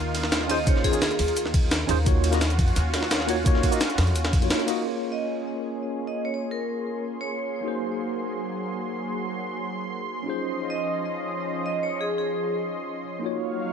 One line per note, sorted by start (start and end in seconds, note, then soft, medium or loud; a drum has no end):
0.00 1.09 D#2 medium
0.00 2.04 D#3 medium
0.00 2.02 A#3 medium
0.00 2.04 F4 loud
0.15 snare soft
0.15 closed hi-hat medium
0.15 ride medium
0.23 snare soft
0.32 snare loud
0.32 closed hi-hat medium
0.32 shaker soft
0.41 snare soft
0.48 0.57 C#4 loud
0.48 0.57 D#4 medium
0.48 0.57 F4 loud
0.48 0.58 G#4 medium
0.48 0.58 C5 loud
0.48 0.65 D#5 medium
0.48 closed hi-hat medium
0.48 ride medium
0.48 shaker soft
0.65 0.90 C#4 medium
0.65 0.91 D#4 medium
0.65 0.91 F4 medium
0.65 0.92 G#4 medium
0.65 0.92 C5 loud
0.65 0.74 C#5 medium
0.65 kick loud
0.65 closed hi-hat medium
0.65 shaker medium
0.76 snare soft
0.84 1.00 G#4 medium
0.84 kick medium
0.84 closed hi-hat medium
0.84 ride medium
0.84 shaker soft
0.92 1.00 C#4 medium
0.92 1.00 D#4 medium
0.92 1.01 F4 medium
0.92 1.01 G#4 medium
0.92 1.02 C#5 loud
0.92 closed hi-hat soft
0.92 shaker medium
1.02 1.37 G#4 loud
1.02 snare loud
1.02 closed hi-hat medium
1.02 shaker medium
1.11 closed hi-hat soft
1.11 shaker soft
1.19 1.88 D#2 loud
1.19 closed hi-hat medium
1.19 open hi-hat medium
1.19 ride medium
1.28 closed hi-hat soft
1.37 closed hi-hat loud
1.37 closed hi-hat medium
1.37 shaker medium
1.46 snare soft
1.54 kick loud
1.54 closed hi-hat medium
1.54 ride medium
1.71 snare loud
1.71 closed hi-hat medium
1.71 shaker medium
1.81 snare soft
1.87 2.59 D#2 loud
1.87 1.96 C#4 loud
1.87 1.96 D#4 medium
1.87 1.97 F4 medium
1.87 1.97 G#4 medium
1.87 1.98 C5 loud
1.87 closed hi-hat medium
1.87 ride medium
1.87 shaker soft
2.05 2.30 A#3 medium
2.05 4.83 C#4 medium
2.05 2.30 D#4 medium
2.05 2.31 F4 medium
2.05 4.83 F4 medium
2.05 4.83 F#4 medium
2.05 2.31 F#4 medium
2.05 2.32 C#5 loud
2.05 kick loud
2.05 closed hi-hat loud
2.05 closed hi-hat medium
2.05 shaker medium
2.24 closed hi-hat medium
2.24 ride medium
2.24 shaker soft
2.31 2.40 A#3 medium
2.31 2.40 D#4 medium
2.31 2.40 F4 medium
2.31 2.41 F#4 medium
2.31 2.41 D#5 loud
2.31 snare medium
2.31 closed hi-hat soft
2.31 shaker medium
2.41 snare loud
2.41 closed hi-hat loud
2.41 closed hi-hat medium
2.41 shaker medium
2.50 closed hi-hat soft
2.50 shaker soft
2.59 2.74 F2 loud
2.59 kick loud
2.59 closed hi-hat medium
2.59 ride medium
2.68 closed hi-hat soft
2.76 3.62 D#2 medium
2.76 snare soft
2.76 closed hi-hat medium
2.76 closed hi-hat loud
2.76 shaker medium
2.94 snare loud
2.94 closed hi-hat medium
2.94 ride medium
3.03 snare soft
3.11 snare loud
3.11 closed hi-hat medium
3.11 shaker medium
3.20 snare soft
3.27 3.36 A#3 loud
3.27 3.36 D#4 medium
3.27 3.36 F4 medium
3.27 3.37 F#4 medium
3.27 3.37 C#5 loud
3.27 closed hi-hat medium
3.27 ride medium
3.27 shaker soft
3.44 3.69 A#3 loud
3.44 3.70 D#4 medium
3.44 3.70 F4 medium
3.44 3.71 F#4 medium
3.44 3.71 C#5 loud
3.44 kick loud
3.44 closed hi-hat loud
3.44 closed hi-hat medium
3.44 shaker medium
3.55 snare soft
3.63 kick medium
3.63 closed hi-hat medium
3.63 ride medium
3.63 shaker soft
3.71 3.79 A#3 medium
3.71 3.79 D#4 medium
3.71 3.80 F4 medium
3.71 3.80 F#4 medium
3.71 3.81 D#5 loud
3.71 closed hi-hat soft
3.71 shaker medium
3.81 snare loud
3.81 closed hi-hat loud
3.81 closed hi-hat medium
3.81 shaker medium
3.90 closed hi-hat soft
3.90 shaker soft
3.98 4.16 F2 loud
3.98 snare loud
3.98 snare soft
3.98 closed hi-hat medium
3.98 open hi-hat medium
3.98 ride medium
4.07 closed hi-hat soft
4.16 4.33 D#2 loud
4.16 closed hi-hat loud
4.16 closed hi-hat medium
4.16 shaker medium
4.25 snare loud
4.25 snare soft
4.25 closed hi-hat medium
4.33 4.49 F2 medium
4.33 kick loud
4.33 snare soft
4.33 closed hi-hat medium
4.33 ride medium
4.33 shaker soft
4.41 4.65 A#3 medium
4.41 4.66 D#4 medium
4.41 4.66 F4 medium
4.41 4.66 F#4 medium
4.41 4.67 C#5 medium
4.41 closed hi-hat medium
4.50 snare loud
4.50 closed hi-hat medium
4.50 shaker medium
4.59 snare soft
4.59 closed hi-hat soft
4.66 4.81 A#3 medium
4.66 4.83 D#4 medium
4.66 4.83 F4 medium
4.66 4.84 F#4 medium
4.66 4.84 D#5 medium
4.66 closed hi-hat medium
4.66 ride medium
4.66 shaker soft
4.82 7.60 A#3 medium
4.82 10.22 A#3 medium
4.82 7.62 C#4 medium
4.82 7.63 F4 medium
4.82 10.22 G#4 medium
4.82 13.19 C6 medium
4.87 7.63 G#4 medium
4.87 7.64 C#5 medium
5.12 5.33 D#5 medium
6.07 6.23 D#5 medium
6.25 6.32 C#5 medium
6.34 6.50 C#5 medium
6.51 7.00 A#4 medium
7.21 7.68 C#5 medium
7.61 10.24 F#3 medium
7.61 10.22 A#3 medium
7.61 10.23 D#4 medium
7.61 10.24 F#4 medium
7.66 10.25 G#4 medium
7.66 10.26 C5 medium
10.23 13.20 F3 medium
10.23 13.02 C#4 medium
10.23 13.20 C#4 medium
10.23 13.02 D#4 medium
10.23 13.03 F4 medium
10.23 13.20 D#5 medium
10.28 13.04 G#4 medium
10.28 13.05 C5 medium
10.70 10.91 D#5 medium
11.66 11.81 D#5 medium
11.83 11.90 C#5 medium
12.01 12.16 G#4 medium
12.18 12.53 G#4 medium
13.19 13.73 F#3 medium
13.19 13.73 A#3 medium
13.19 13.73 D#4 medium
13.19 13.73 F4 medium
13.19 13.73 C#5 medium
13.19 13.73 F5 medium
13.24 13.73 F#4 medium
13.24 13.73 C#5 medium